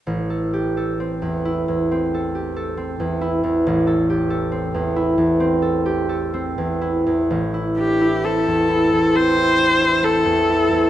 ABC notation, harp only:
X:1
M:4/4
L:1/16
Q:1/4=66
K:Am
V:1 name="Harp"
A,,, A G A C E,, E E,, C A G A C E,, E E,, | A,,, A G A C E,, E E,, C A G A C E,, E E,, | A,,, E D E C E,, E E,, C E D E C E,, E E,, |]